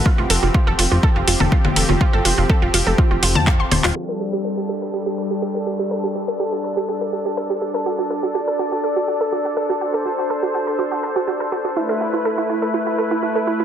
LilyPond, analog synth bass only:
\new Staff \with { instrumentName = "Analog synth bass" } { \clef bass \time 4/4 \key f \mixolydian \tempo 4 = 123 r16 f,,16 f,,16 f,,16 r16 f,,16 f,,16 f,,16 r16 f,,16 f,,16 f,,16 r16 f,,16 f,,16 f,,16 | r16 g,,16 f,,16 f,,16 r16 f,,16 f,,16 f,,16 r16 f,,16 f,,16 f,8 ees,,16 ees,,16 ees,,16 | r1 | r1 |
r1 | r1 | r1 | }